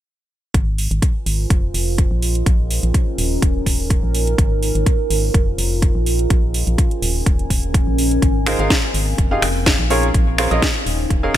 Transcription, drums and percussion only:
0.54 kick loud
0.54 closed hi-hat medium
0.78 open hi-hat loud
0.91 closed hi-hat medium
1.02 kick loud
1.02 closed hi-hat medium
1.26 open hi-hat loud
1.50 kick loud
1.50 closed hi-hat medium
1.74 open hi-hat loud
1.98 kick loud
1.98 closed hi-hat medium
2.22 open hi-hat loud
2.35 closed hi-hat medium
2.46 kick loud
2.46 closed hi-hat medium
2.71 open hi-hat loud
2.83 closed hi-hat medium
2.94 kick loud
2.94 closed hi-hat medium
3.18 open hi-hat loud
3.42 kick loud
3.42 closed hi-hat medium
3.66 kick medium
3.66 open hi-hat loud
3.90 kick loud
3.90 closed hi-hat medium
4.15 open hi-hat loud
4.27 closed hi-hat medium
4.38 kick loud
4.38 closed hi-hat medium
4.63 open hi-hat loud
4.75 closed hi-hat soft
4.86 kick loud
4.86 closed hi-hat medium
5.10 open hi-hat loud
5.34 kick loud
5.34 closed hi-hat medium
5.58 open hi-hat loud
5.82 kick loud
5.82 closed hi-hat medium
6.06 open hi-hat loud
6.19 closed hi-hat soft
6.30 kick loud
6.30 closed hi-hat medium
6.54 open hi-hat loud
6.67 closed hi-hat soft
6.78 kick loud
6.78 closed hi-hat medium
6.91 closed hi-hat soft
7.02 open hi-hat loud
7.26 kick loud
7.26 closed hi-hat medium
7.39 closed hi-hat soft
7.50 kick medium
7.50 open hi-hat loud
7.63 closed hi-hat soft
7.74 kick loud
7.74 closed hi-hat medium
7.98 open hi-hat loud
8.11 closed hi-hat soft
8.22 kick loud
8.22 closed hi-hat medium
8.46 finger snap medium
8.46 open hi-hat loud
8.59 closed hi-hat soft
8.70 kick loud
8.70 snare loud
8.70 closed hi-hat medium
8.94 open hi-hat loud
9.18 kick loud
9.18 closed hi-hat medium
9.42 finger snap medium
9.42 open hi-hat loud
9.66 kick loud
9.66 snare loud
9.66 closed hi-hat medium
9.90 open hi-hat loud
10.03 closed hi-hat soft
10.14 kick loud
10.14 closed hi-hat medium
10.38 finger snap medium
10.38 open hi-hat loud
10.51 closed hi-hat medium
10.62 kick loud
10.62 snare loud
10.62 closed hi-hat medium
10.86 open hi-hat loud
11.10 kick loud
11.10 closed hi-hat medium

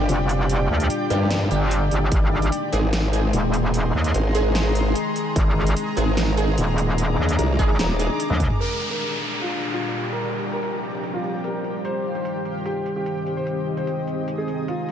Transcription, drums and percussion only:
0.09 closed hi-hat medium
0.29 closed hi-hat medium
0.49 closed hi-hat medium
0.80 closed hi-hat medium
0.90 closed hi-hat medium
1.10 closed hi-hat soft
1.31 snare loud
1.31 closed hi-hat medium
1.51 closed hi-hat medium
1.71 closed hi-hat medium
1.91 closed hi-hat medium
2.12 kick loud
2.12 closed hi-hat medium
2.42 closed hi-hat soft
2.52 closed hi-hat medium
2.73 closed hi-hat soft
2.93 snare loud
2.93 closed hi-hat medium
3.13 closed hi-hat medium
3.33 closed hi-hat medium
3.54 closed hi-hat medium
3.74 closed hi-hat medium
4.04 closed hi-hat medium
4.14 closed hi-hat medium
4.35 closed hi-hat soft
4.55 snare loud
4.55 closed hi-hat medium
4.75 closed hi-hat soft
4.95 closed hi-hat medium
5.16 closed hi-hat soft
5.36 kick loud
5.36 closed hi-hat medium
5.67 closed hi-hat medium
5.77 closed hi-hat medium
5.97 closed hi-hat medium
6.17 snare loud
6.17 closed hi-hat medium
6.37 closed hi-hat medium
6.58 closed hi-hat medium
6.78 closed hi-hat medium
6.98 closed hi-hat medium
7.29 closed hi-hat medium
7.39 closed hi-hat medium
7.59 kick medium
7.59 closed hi-hat medium
7.79 snare loud
7.79 closed hi-hat medium
8.00 closed hi-hat medium
8.20 closed hi-hat medium
8.30 high tom medium
8.40 kick medium
8.40 closed hi-hat medium
8.40 mid tom medium
8.50 mid tom medium
8.60 closed hi-hat medium
8.91 closed hi-hat medium
9.01 closed hi-hat medium
9.21 closed hi-hat soft
9.41 closed hi-hat medium
9.62 closed hi-hat medium
9.82 closed hi-hat medium
10.02 closed hi-hat medium
10.22 closed hi-hat medium
10.53 closed hi-hat medium
10.63 closed hi-hat medium
10.83 closed hi-hat soft
11.04 closed hi-hat medium
11.24 closed hi-hat medium
11.44 closed hi-hat medium
11.64 closed hi-hat medium
11.85 closed hi-hat medium
12.15 closed hi-hat soft
12.25 closed hi-hat medium
12.45 closed hi-hat soft
12.66 closed hi-hat medium
12.86 closed hi-hat medium
13.06 closed hi-hat medium
13.27 closed hi-hat soft
13.47 closed hi-hat medium
13.77 closed hi-hat soft
13.87 closed hi-hat medium
14.08 closed hi-hat soft
14.28 closed hi-hat medium
14.48 closed hi-hat soft
14.68 closed hi-hat medium
14.89 closed hi-hat soft

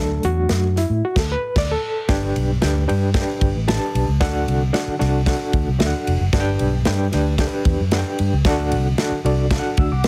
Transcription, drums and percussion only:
0.23 closed hi-hat medium
0.49 snare loud
0.49 closed hi-hat medium
0.76 snare soft
0.76 closed hi-hat medium
1.16 kick loud
1.16 snare medium
1.16 crash medium
1.56 kick loud
1.56 snare loud
1.56 crash medium
2.09 kick loud
2.09 snare loud
2.09 ride medium
2.36 ride medium
2.62 snare loud
2.62 ride medium
2.89 ride medium
3.14 kick loud
3.14 snare loud
3.14 ride medium
3.41 kick loud
3.41 ride medium
3.68 snare loud
3.68 ride medium
3.95 ride medium
4.21 kick loud
4.21 snare loud
4.21 ride medium
4.48 ride medium
4.74 snare loud
4.74 ride medium
5.00 snare soft
5.00 ride medium
5.26 kick medium
5.26 snare loud
5.26 ride medium
5.53 kick loud
5.53 ride medium
5.80 snare loud
5.80 ride medium
6.07 ride medium
6.33 kick loud
6.33 snare loud
6.33 ride medium
6.59 ride medium
6.85 snare loud
6.85 ride medium
7.12 snare soft
7.12 ride medium
7.38 kick loud
7.38 snare loud
7.38 ride medium
7.65 kick loud
7.65 ride medium
7.91 snare loud
7.91 ride medium
8.19 ride medium
8.45 kick loud
8.45 snare loud
8.45 ride medium
8.72 ride medium
8.98 snare loud
8.98 ride medium
9.26 ride medium
9.51 kick medium
9.51 snare loud
9.51 ride medium
9.77 kick loud
9.77 ride medium
10.04 snare loud
10.04 ride medium

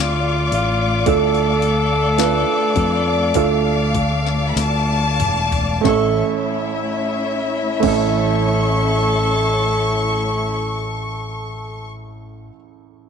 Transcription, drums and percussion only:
0.52 open hi-hat medium
1.06 kick loud
1.06 open hi-hat medium
1.35 open hi-hat soft
1.62 open hi-hat medium
2.18 snare loud
2.18 open hi-hat medium
2.76 kick medium
2.76 open hi-hat medium
3.34 kick medium
3.34 open hi-hat medium
3.95 kick medium
3.95 open hi-hat medium
4.27 snare soft
4.57 snare medium
4.57 open hi-hat medium
5.20 mid tom medium
5.20 open hi-hat medium
5.52 floor tom medium
5.52 open hi-hat soft
5.85 kick loud
5.85 snare medium
7.83 kick loud
7.83 crash medium

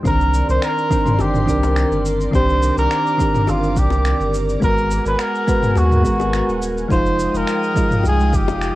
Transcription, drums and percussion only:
0.05 kick loud
0.05 cabasa soft
0.21 cabasa soft
0.34 cabasa medium
0.49 cabasa soft
0.62 finger snap loud
0.62 cabasa soft
0.78 cabasa soft
0.91 kick loud
0.91 cabasa medium
1.06 mid tom medium
1.06 cabasa soft
1.19 high bongo medium
1.19 cabasa soft
1.34 mid tom medium
1.34 cabasa soft
1.48 kick medium
1.48 cabasa medium
1.63 high bongo medium
1.63 cabasa soft
1.76 finger snap loud
1.76 cabasa soft
1.92 cabasa soft
2.06 cabasa medium
2.21 cabasa soft
2.33 kick loud
2.33 cabasa soft
2.49 cabasa soft
2.63 cabasa medium
2.78 cabasa soft
2.91 finger snap loud
2.91 cabasa soft
3.07 cabasa soft
3.19 kick loud
3.19 cabasa medium
3.34 mid tom medium
3.34 cabasa soft
3.47 high bongo medium
3.47 cabasa soft
3.63 cabasa soft
3.76 kick loud
3.76 cabasa medium
3.90 high bongo medium
3.90 cabasa soft
4.05 finger snap loud
4.05 cabasa soft
4.21 cabasa soft
4.34 cabasa medium
4.49 cabasa soft
4.62 kick loud
4.62 cabasa soft
4.78 cabasa soft
4.91 cabasa medium
5.06 cabasa soft
5.19 finger snap loud
5.19 cabasa soft
5.35 cabasa soft
5.48 kick loud
5.48 cabasa medium
5.63 mid tom medium
5.63 cabasa soft
5.76 high bongo medium
5.76 cabasa soft
5.91 mid tom medium
5.91 cabasa soft
6.05 kick medium
6.05 cabasa medium
6.20 high bongo medium
6.20 cabasa soft
6.33 finger snap loud
6.33 cabasa soft
6.49 cabasa soft
6.62 cabasa medium
6.78 cabasa soft
6.91 kick loud
6.91 cabasa soft
7.06 cabasa soft
7.20 cabasa medium
7.35 cabasa soft
7.47 finger snap loud
7.47 cabasa soft
7.63 cabasa soft
7.76 kick loud
7.76 cabasa medium
7.91 mid tom medium
7.91 cabasa soft
8.03 high bongo medium
8.03 cabasa soft
8.20 cabasa soft
8.33 kick loud
8.33 cabasa medium
8.48 high bongo medium
8.48 cabasa soft
8.62 finger snap medium
8.62 cabasa soft

